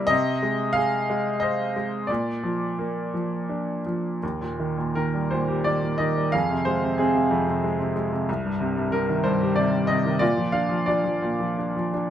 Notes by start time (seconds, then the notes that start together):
Already playing: C3 G3 A#3 E4 A#4 C5
0.07 C3 D#5
0.43 G#3
0.73 G#4 F5
1.10 G#3
1.40 C5 D#5
1.76 G#3
2.07 A#2 D5
2.43 F3
2.79 A#3
3.14 F3
3.49 D4
3.86 F3
4.23 D#2
4.41 A#2
4.59 D#3
4.78 A#2
4.95 D#3 A#4
5.14 G3
5.31 A#2 C5
5.48 G4
5.64 D#3 D5
5.82 A#2
5.98 D#3 D#5
6.17 G3
6.32 F2 G#4 F5
6.50 C3
6.65 G#3 C5
6.84 C3
6.98 G#3 C4 G#4
7.15 C3
7.31 F2
7.48 C3
7.64 G#3
7.80 C3
7.96 G#3
8.13 C3
8.29 C2
8.46 G2
8.61 C3
8.77 G2
8.92 C3 A#4
9.09 D#3
9.24 G2 C5
9.41 G4
9.56 C3 D5
9.73 G2
9.87 C3 D#5
10.05 D#3
10.19 A#2 F4 D5
10.37 F3
10.52 D4 F5
10.69 F3
10.86 D4 F4 D5
11.04 F3
11.22 A#2
11.40 F3
11.58 D4
11.76 F3
11.94 D4